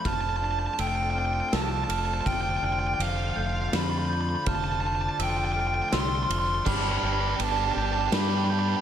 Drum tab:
CC |------|------|------|x-----|
RD |x-x-xx|x-x-x-|x-x-xx|--x-x-|
SD |----o-|----o-|----o-|----o-|
BD |o-----|o-----|o-----|o-----|